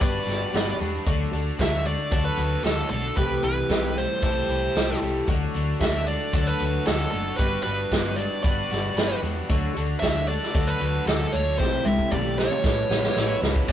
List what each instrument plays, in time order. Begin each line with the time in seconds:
Already playing: overdriven electric guitar G3 D4
0.00 fingered electric bass G1, twelve-string acoustic guitar G3 B3 D4 F#4, overdriven electric guitar B4, lead electric guitar D5, kick, closed hi-hat
0.27 fingered electric bass G1, overdriven electric guitar F#4, snare, closed hi-hat
0.53 fingered electric bass G1, twelve-string acoustic guitar G3 B3 D4 F#4, overdriven electric guitar B4, snare, closed hi-hat
0.80 fingered electric bass E2, overdriven electric guitar D4, closed hi-hat
1.06 fingered electric bass D2, twelve-string acoustic guitar D3 F#3 A3 D4 F#4, overdriven electric guitar D3, kick, closed hi-hat
1.31 fingered electric bass D2, twelve-string acoustic guitar A3 D4 F#4, overdriven electric guitar D4, closed hi-hat
1.59 fingered electric bass D2, overdriven electric guitar D3, twelve-string acoustic guitar F#3 A3 D4 F#4, lead electric guitar E5, kick, snare, closed hi-hat
1.85 twelve-string acoustic guitar A3 D4 F#4, overdriven electric guitar D4, lead electric guitar D5, closed hi-hat
2.11 fingered electric bass D2, twelve-string acoustic guitar D3 F#3 A3 D4 F#4, overdriven electric guitar A4, kick, closed hi-hat
2.24 lead electric guitar B4
2.37 fingered electric bass D2, overdriven electric guitar F#4, closed hi-hat
2.63 fingered electric bass D2, twelve-string acoustic guitar F#3 A3 D4 F#4, lead electric guitar A4, overdriven electric guitar A4, snare, closed hi-hat
2.90 fingered electric bass B1, overdriven electric guitar D4, lead electric guitar A4, closed hi-hat
3.17 fingered electric bass C2, overdriven electric guitar C3, twelve-string acoustic guitar C3 E3 A3 E4 G4, lead electric guitar B4, kick, closed hi-hat
3.43 fingered electric bass C2, overdriven electric guitar E3, twelve-string acoustic guitar A3 E4 G4, lead electric guitar B4, closed hi-hat
3.69 fingered electric bass C2, twelve-string acoustic guitar E3 A3 E4 G4, overdriven electric guitar A3, kick, snare, closed hi-hat
3.96 overdriven electric guitar G3, twelve-string acoustic guitar A3 E4 G4, lead electric guitar C5, closed hi-hat
4.22 fingered electric bass C2, twelve-string acoustic guitar C3 E3 A3 E4 G4, overdriven electric guitar A4, lead electric guitar C5, kick, closed hi-hat
4.48 fingered electric bass C2, overdriven electric guitar E4, closed hi-hat
4.75 fingered electric bass C2, twelve-string acoustic guitar E3 A3 E4 G4, overdriven electric guitar A4, snare, closed hi-hat
5.01 fingered electric bass C2, overdriven electric guitar G3, closed hi-hat
5.27 fingered electric bass D2, twelve-string acoustic guitar D3 F#3 A3 D4 F#4, overdriven electric guitar D3, kick, closed hi-hat
5.54 fingered electric bass D2, overdriven electric guitar D4, closed hi-hat
5.79 fingered electric bass D2, overdriven electric guitar D3, twelve-string acoustic guitar F#3 A3 D4 F#4, lead electric guitar E5, kick, snare, closed hi-hat
6.07 overdriven electric guitar D4, lead electric guitar D5, closed hi-hat
6.33 fingered electric bass D2, twelve-string acoustic guitar D3 F#3 A3 D4 F#4, overdriven electric guitar A4, kick, closed hi-hat
6.47 lead electric guitar B4
6.60 fingered electric bass D2, overdriven electric guitar F#4, closed hi-hat
6.85 fingered electric bass D2, twelve-string acoustic guitar F#3 A3 D4 F#4, overdriven electric guitar A4, lead electric guitar A4, snare, closed hi-hat
7.11 fingered electric bass F#1, overdriven electric guitar D4, lead electric guitar A4, closed hi-hat
7.37 fingered electric bass G1, twelve-string acoustic guitar G3 B3 D4 F#4, overdriven electric guitar G3, lead electric guitar B4, kick, closed hi-hat
7.63 fingered electric bass G1, twelve-string acoustic guitar B3 D4 F#4, overdriven electric guitar D4, lead electric guitar B4, closed hi-hat
7.91 fingered electric bass G1, twelve-string acoustic guitar G3 B3 D4 F#4, overdriven electric guitar G3, kick, snare, closed hi-hat
8.16 twelve-string acoustic guitar B3 D4 F#4, overdriven electric guitar D4, lead electric guitar D5, closed hi-hat
8.43 fingered electric bass G1, twelve-string acoustic guitar G3 B3 D4 F#4, overdriven electric guitar B4, lead electric guitar D5, kick, closed hi-hat
8.71 fingered electric bass G1, overdriven electric guitar F#4, snare, closed hi-hat
8.96 fingered electric bass G1, twelve-string acoustic guitar G3 B3 D4 F#4, overdriven electric guitar B4, snare, closed hi-hat
9.23 fingered electric bass E2, overdriven electric guitar D4, closed hi-hat
9.49 fingered electric bass D2, twelve-string acoustic guitar D3 F#3 A3 D4 F#4, overdriven electric guitar D3, kick, closed hi-hat
9.74 fingered electric bass D2, twelve-string acoustic guitar A3 D4 F#4, overdriven electric guitar D4, closed hi-hat
10.00 fingered electric bass D2, overdriven electric guitar D3, twelve-string acoustic guitar F#3 A3 D4 F#4, lead electric guitar E5, kick, snare, closed hi-hat
10.27 twelve-string acoustic guitar A3 D4 F#4, overdriven electric guitar D4, lead electric guitar D5, closed hi-hat
10.43 snare
10.54 fingered electric bass D2, twelve-string acoustic guitar D3 F#3 A3 D4 F#4, overdriven electric guitar A4, kick, closed hi-hat
10.67 lead electric guitar B4
10.80 fingered electric bass D2, overdriven electric guitar F#4, closed hi-hat
11.06 fingered electric bass D2, twelve-string acoustic guitar F#3 A3 D4 F#4, overdriven electric guitar A4, lead electric guitar A4, snare, closed hi-hat
11.33 fingered electric bass D2, overdriven electric guitar D4, lead electric guitar C#5, closed hi-hat
11.58 fingered electric bass C2, twelve-string acoustic guitar C3 E3 A3 E4 G4, overdriven electric guitar C3, lead electric guitar C5, kick, snare
11.84 fingered electric bass C2, overdriven electric guitar E3, lead electric guitar E5, high tom
11.99 kick
12.10 fingered electric bass B1, twelve-string acoustic guitar E3 A3 E4 G4, overdriven electric guitar A3, lead electric guitar D5, kick, mid tom
12.36 overdriven electric guitar G3, twelve-string acoustic guitar A3 E4 G4, lead electric guitar C#5, snare
12.51 mid tom
12.63 fingered electric bass A1, overdriven electric guitar A2, twelve-string acoustic guitar A3 C#4 E4 B4, kick, snare
12.89 fingered electric bass A1, overdriven electric guitar B3, snare
13.04 snare
13.16 fingered electric bass A1, twelve-string acoustic guitar A3 C#4 E4 B4, overdriven electric guitar E4, snare
13.41 fingered electric bass C#2, overdriven electric guitar C#4, snare
13.56 kick
13.68 fingered electric bass B1, twelve-string acoustic guitar B2 F#3 C#4 D4, kick, crash